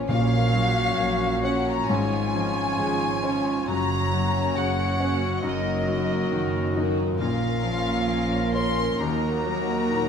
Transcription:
Already playing: A#2 F3 C#4 C#5
0.09 A#1 A#2 F#3 F#4 C#5 F5
0.53 F#3 C#4 F#4 C#5
0.98 A#1 A#2 A#3 C#4
1.43 C#4 F#4 C#5 F#5
1.67 A#5
1.88 G#1 G#2 F3 C#4 F4 C#5 G#5
2.35 F3 C#4 F4 C#5
2.79 G#1 G#2 G#3 C#4
3.24 C#4 F4 C#5
3.68 F#1 F#2 F#3 C#4 F#4 C#5 A#5
4.11 F#3 A#3 C#4 F#4 C#5
4.56 F#1 F#2 C#3 C#4 F#4 C#5 F#5
4.99 A#3 C#4 F#4 C#5
5.43 F#1 F#2 A#3 D#4 F#4 A#4 D#5
5.88 F#3 A#3 D#4 F#4 A#4
6.31 F#1 F#2 D#3 D#4
6.75 A#3 D#4 F#4 A#4
7.19 A#1 A#2 F3 A#3 C#4 F4 A#4 F5
7.64 F3
8.09 A#3 C#4
8.54 C#4 A#4 C6
9.00 D#2 D#3 F#3 D#4 F#4 A#5
9.46 F#3
9.91 A#2 A#4

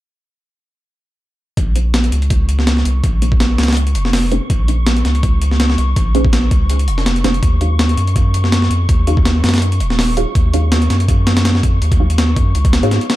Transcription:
1.57 A#1 C#6, kick, closed hi-hat
1.76 A#3 C#4 D#4 G#4 C5, closed hi-hat
1.94 snare, closed hi-hat
2.04 closed hi-hat
2.12 C#2, closed hi-hat
2.22 closed hi-hat
2.30 kick, closed hi-hat
2.49 closed hi-hat
2.59 snare
2.67 snare, closed hi-hat
2.77 snare
2.85 C2, closed hi-hat
3.04 A#1, kick, closed hi-hat
3.22 A#3 C#4 D#4 G#4 C5, closed hi-hat
3.32 kick
3.40 snare, closed hi-hat
3.58 C#2, snare, closed hi-hat
3.63 snare, closed hi-hat
3.68 snare, closed hi-hat
3.73 snare, closed hi-hat
3.77 closed hi-hat
3.87 closed hi-hat
3.95 F1, closed hi-hat
4.05 snare
4.13 snare, open hi-hat
4.32 A#3 C#4 D#4 G#4 C5, closed hi-hat
4.50 A#1, kick, closed hi-hat
4.68 A#3 C#4 D#4 G#4 C5, closed hi-hat
4.87 snare, closed hi-hat
4.97 closed hi-hat
5.05 C#2, snare, closed hi-hat
5.15 closed hi-hat
5.23 kick, closed hi-hat
5.42 closed hi-hat
5.51 snare
5.60 snare, closed hi-hat
5.70 snare
5.78 C2, closed hi-hat
5.96 A#1, kick, closed hi-hat
6.15 A#3 C#4 D#4 G#4 C5, closed hi-hat
6.25 kick
6.33 snare, closed hi-hat
6.51 C#2, kick, closed hi-hat
6.70 closed hi-hat
6.79 closed hi-hat
6.88 F1, closed hi-hat
6.98 snare
7.06 snare, closed hi-hat
7.16 closed hi-hat
7.24 F1 A#3 C#4 D#4 G#4 C5, snare, closed hi-hat
7.34 closed hi-hat
7.43 D#2, kick, closed hi-hat
7.61 D#4 F#4 G#4 C#5 F5, closed hi-hat
7.79 snare, closed hi-hat
7.89 closed hi-hat
7.97 F#2, closed hi-hat
8.07 closed hi-hat
8.16 kick, closed hi-hat
8.34 closed hi-hat
8.44 snare
8.52 snare, closed hi-hat
8.62 snare
8.70 F2, closed hi-hat
8.89 D#2, kick, closed hi-hat
9.07 D#4 F#4 G#4 C#5 F5, closed hi-hat
9.17 kick
9.25 snare, closed hi-hat
9.44 F#2, snare, closed hi-hat
9.49 snare, closed hi-hat
9.54 snare, closed hi-hat
9.58 snare, closed hi-hat
9.62 closed hi-hat
9.72 closed hi-hat
9.80 D#1, closed hi-hat
9.90 snare
9.99 snare, open hi-hat
10.17 D#4 F#4 G#4 C#5 F5, closed hi-hat
10.35 D#2, kick, closed hi-hat
10.54 D#4 F#4 G#4 C#5 F5, closed hi-hat
10.72 snare, closed hi-hat
10.82 closed hi-hat
10.90 F#2, snare, closed hi-hat
11.00 closed hi-hat
11.08 kick, closed hi-hat
11.27 snare, closed hi-hat
11.37 snare, closed hi-hat
11.45 snare, closed hi-hat
11.55 snare
11.63 F2, kick, closed hi-hat
11.81 D#2, closed hi-hat
11.92 kick, closed hi-hat
12.00 D#4 F#4 G#4 C#5 F5
12.10 closed hi-hat
12.18 snare, closed hi-hat
12.36 F#2, kick, closed hi-hat
12.55 C#2, closed hi-hat
12.65 kick, closed hi-hat
12.73 snare, closed hi-hat
12.83 G#2 D#4 F#4 G#4 C#5 F5, closed hi-hat
12.91 snare, closed hi-hat
13.01 closed hi-hat
13.10 snare, closed hi-hat

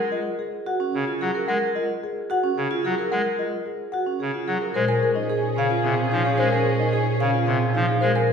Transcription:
0.12 F4 A#4 D#5
0.39 G#4
0.66 F#4 F#5
0.80 C#4
0.94 C#3 G#4
1.07 F4
1.21 F#3 G#4 F#5
1.35 A#4
1.48 G#3 A#4 F#5
1.75 F4 A#4 D#5
2.04 G#4
2.30 F#4 F#5
2.44 C#4
2.57 C#3 G#4
2.71 F4
2.85 F#3 G#4 F#5
2.98 A#4
3.11 G#3 A#4 F#5
3.39 F4 A#4 D#5
3.66 G#4
3.92 F#4 F#5
4.07 C#4
4.20 C#3 G#4
4.34 F4
4.47 F#3 G#4 F#5
4.61 A#4
4.74 A#2 G#3 C#4 G#4 A#4 C5
4.88 A#4 G#5
5.03 A#4
5.15 D#4 D#5
5.30 G#4
5.56 C#3 C#4 F5
5.71 F4
5.84 C3 C4 G#4
6.11 F3 D#4 F5
6.25 G#4 F5
6.38 G#3 A#4 C5
6.52 A#4 G#5
6.66 A#4
6.80 D#4 D#5
6.92 G#4
7.20 C#3 C#4 F5
7.34 F4
7.47 C3 C4 G#4
7.74 F3 D#4 F5
7.88 G#4 F5
8.01 G#3 A#4 C5
8.16 A#4 G#5
8.27 A#4

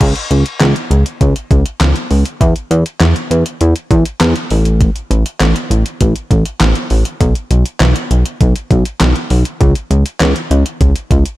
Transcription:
0.01 C#2, kick, closed hi-hat, crash
0.16 closed hi-hat
0.31 C#2, closed hi-hat
0.46 closed hi-hat
0.60 C#2, snare, clap, closed hi-hat
0.76 closed hi-hat
0.91 C#2, closed hi-hat
1.06 closed hi-hat
1.21 C#2, kick, closed hi-hat
1.36 closed hi-hat
1.51 C#2, kick, closed hi-hat
1.66 closed hi-hat
1.80 C#2, snare, clap, closed hi-hat
1.96 closed hi-hat
2.11 C#2, open hi-hat
2.25 closed hi-hat
2.41 E2, kick, closed hi-hat
2.56 closed hi-hat
2.71 E2, closed hi-hat
2.86 closed hi-hat
3.00 E2, snare, clap, closed hi-hat
3.16 closed hi-hat
3.31 E2, closed hi-hat
3.46 closed hi-hat
3.61 E2, closed hi-hat
3.76 closed hi-hat
3.91 E2, kick, closed hi-hat
4.05 closed hi-hat
4.20 E2, snare, clap, closed hi-hat
4.36 closed hi-hat
4.50 A1, open hi-hat
4.65 closed hi-hat
4.81 kick, closed hi-hat
4.96 closed hi-hat
5.11 A1, closed hi-hat
5.26 closed hi-hat
5.40 A1, snare, clap, closed hi-hat
5.56 closed hi-hat
5.70 A1, closed hi-hat
5.86 closed hi-hat
6.01 A1, kick, closed hi-hat
6.16 closed hi-hat
6.31 A1, kick, closed hi-hat
6.45 closed hi-hat
6.60 A1, snare, clap, closed hi-hat
6.75 closed hi-hat
6.90 A1, open hi-hat
7.05 closed hi-hat
7.21 B1, kick, closed hi-hat
7.35 closed hi-hat
7.51 B1, closed hi-hat
7.66 closed hi-hat
7.80 B1, snare, clap, closed hi-hat
7.96 closed hi-hat
8.11 B1, closed hi-hat
8.26 closed hi-hat
8.41 B1, kick, closed hi-hat
8.56 closed hi-hat
8.71 B1, kick, closed hi-hat
8.85 closed hi-hat
9.00 B1, snare, clap, closed hi-hat
9.16 closed hi-hat
9.30 B1, open hi-hat
9.45 closed hi-hat
9.61 C#2, kick, closed hi-hat
9.75 closed hi-hat
9.91 C#2, closed hi-hat
10.06 closed hi-hat
10.20 C#2, snare, clap, closed hi-hat
10.36 closed hi-hat
10.51 C#2, closed hi-hat
10.66 closed hi-hat
10.81 C#2, kick, closed hi-hat
10.96 closed hi-hat
11.11 C#2, kick, closed hi-hat
11.26 closed hi-hat

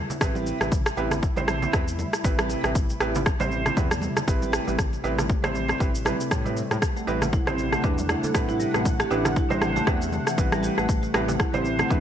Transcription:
Already playing: C3 G3 A3 E4
0.10 muted conga, low conga, shaker
0.21 A1 C4 E4 G4 B4, kick, cross-stick, shaker
0.35 high conga, shaker
0.47 muted conga, shaker
0.61 A1 C4 E4 G4 B4, cross-stick, high conga, shaker
0.72 kick, mid tom, shaker
0.86 cross-stick, muted conga, shaker
0.97 A1 C4 E4 G4 B4, shaker
1.11 cross-stick, low conga, shaker
1.23 kick, shaker
1.36 A1 C4 E4 G4 C5, high conga, low conga, shaker
1.48 cross-stick, mid tom, shaker
1.62 muted conga, low conga, shaker
1.73 E2 C4 E4 G4 B4, kick, cross-stick, shaker
1.88 shaker
1.99 mid tom, high conga, shaker
2.13 cross-stick, muted conga, shaker
2.24 A1 C4 E4 G4 B4, kick, high conga, shaker
2.39 cross-stick, high conga, shaker
2.50 muted conga, shaker
2.64 A1 C4 E4 G4 B4, cross-stick, high conga, shaker
2.75 kick, shaker
2.90 muted conga, shaker
3.00 A1 C4 E4 G4 B4, cross-stick, shaker
3.15 low conga, shaker
3.26 kick, cross-stick, shaker
3.40 A1 C4 E4 G4 C5, high conga, low conga, shaker
3.52 high conga, shaker
3.66 cross-stick, muted conga, low conga, shaker
3.77 E2 C4 E4 G4 B4, kick, mid tom, shaker
3.91 cross-stick, mid tom, shaker
4.02 mid tom, high conga, shaker
4.17 cross-stick, muted conga, low conga, shaker
4.28 A1 C4 E4 G4 B4, kick, shaker
4.42 high conga, shaker
4.52 cross-stick, muted conga, shaker
4.67 A1 C4 E4 G4 B4, high conga, shaker
4.79 kick, cross-stick, mid tom, shaker
4.93 muted conga, shaker
5.04 A1 C4 E4 G4 B4, shaker
5.19 cross-stick, low conga, shaker
5.30 kick, muted conga, shaker
5.44 A1 C4 E4 G4 C5, cross-stick, high conga, low conga, shaker
5.55 mid tom, shaker
5.69 cross-stick, muted conga, low conga, shaker
5.80 A1 C4 E4 G4 B4, kick, shaker
5.95 shaker
6.05 C4 E4 G4 B4, cross-stick, mid tom, high conga, shaker
6.21 muted conga, shaker
6.31 A2, kick, cross-stick, high conga, shaker
6.45 C4 E4 G4 B4, high conga, shaker
6.57 muted conga, shaker
6.71 A2, cross-stick, high conga, shaker
6.82 F#5, kick, cross-stick, shaker
6.97 A3, muted conga, shaker
7.07 A1 G3 C4 E4 G4 B4, shaker
7.22 cross-stick, low conga, shaker
7.33 E4, kick, muted conga, shaker
7.47 A1 C4 E4 G4 C5, cross-stick, high conga, low conga, shaker
7.58 high conga, shaker
7.73 A3, cross-stick, muted conga, low conga, shaker
7.84 E2 C4 D4 E4 G4 B4, kick, mid tom, shaker
7.98 mid tom, shaker
8.09 E4, cross-stick, mid tom, high conga, shaker
8.23 A4, muted conga, low conga, shaker
8.35 A1 C4 E4 G4 B4, kick, cross-stick, shaker
8.49 E4, high conga, shaker
8.60 G3, muted conga, shaker
8.74 A1 A3 C4 E4 G4 B4, cross-stick, high conga, shaker
8.85 kick, mid tom, shaker
9.00 G4, cross-stick, muted conga, shaker
9.11 A1 C4 D4 E4 G4 B4, shaker
9.25 cross-stick, low conga, shaker
9.36 E4, kick, muted conga, shaker
9.50 A1 G3 C4 E4 G4 C5, high conga, low conga, shaker
9.62 cross-stick, mid tom, shaker
9.76 A3, muted conga, low conga, shaker
9.87 E2 A3 C4 E4 G4 B4, kick, cross-stick, shaker
10.02 shaker
10.12 A3, mid tom, high conga, shaker
10.27 E3, cross-stick, muted conga, shaker
10.38 A1 C4 E4 G4 B4, kick, high conga, shaker
10.52 G3, cross-stick, high conga, shaker
10.63 G4, muted conga, shaker
10.78 A1 A3 C4 E4 G4 B4, cross-stick, high conga, shaker
10.89 kick, shaker
11.03 A3, muted conga, shaker
11.14 A1 G3 C4 E4 G4 B4, cross-stick, shaker
11.28 low conga, shaker
11.40 E4, kick, cross-stick, shaker
11.54 A1 C4 E4 G4 C5, high conga, low conga, shaker
11.64 high conga, shaker
11.79 A3, cross-stick, muted conga, low conga, shaker
11.90 E2 C4 D4 E4 G4 B4, kick, mid tom, shaker

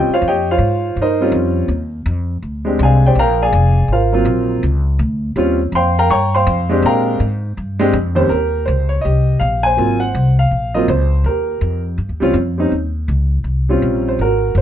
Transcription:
Already playing: G4 C#5 D#5 G5
0.09 muted upright bass stroke
0.13 F4 C5 C#5 F5
0.22 F2
0.28 G4 C#5 D#5 G5
0.51 F4 C5 C#5 F5
0.58 G#2
0.96 G2
1.01 D#4 A#4 C5 D#5
1.21 G3 C4 C#4 F4
1.32 F2
1.68 D#2
2.06 F2
2.42 D2
2.65 G#3 C4 D4 G4
2.79 C2
2.83 G#4 D5 F5 G#5
3.06 G4 C5 D5 G5
3.15 A#1 F5
3.19 A#4 G5 A#5
3.42 G#4 D5 F5 G#5
3.52 F1
3.88 G#1
3.92 F4 A#4 C5 F5
4.12 F#3 A#3 C4 F4
4.25 A#1
4.63 C#2
4.99 D2
5.36 D#2 G3 C4 C#4 F4
5.72 F2 F5 G5 C6
5.76 C5
5.99 A#4 F5 G5 A#5
6.10 G2 C#5 G5 A#5 C#6
6.35 C5 F5 G5 C6
6.46 F2
6.69 G#3 C4 D4 G4
6.82 A#2 A#4 F5 G5 A#5
7.20 G#2
7.57 G2
7.79 G#3 C4 D4 G4
7.93 F2
8.15 D#2 G3 C4 C#4 G4 C5
8.29 D#2 G4 A#4
8.66 C#2 C5
8.89 C#5
9.01 C2 G4 D#5
9.40 A#1 F5
9.63 C5 G#5
9.77 G#1 F#3 A#3 C4 F4
10.00 F#5
10.15 C2
10.39 F5
10.51 A#1
10.74 F#3 A#3 C4 F4 D#5
10.88 C#2 C5
11.24 D#2 A#4
11.29 G4
11.61 F2
11.98 G2
12.09 D#2
12.20 C#2 G3 C4 C#4 F4
12.34 F2
12.58 G3 C4 C#4 D#4
12.72 D#2
13.08 C#2
13.44 C2
13.69 G3 C4 C#4 F4
13.82 A#1
14.08 C5
14.19 G#1 F#4 A#4
14.55 F#1 C5

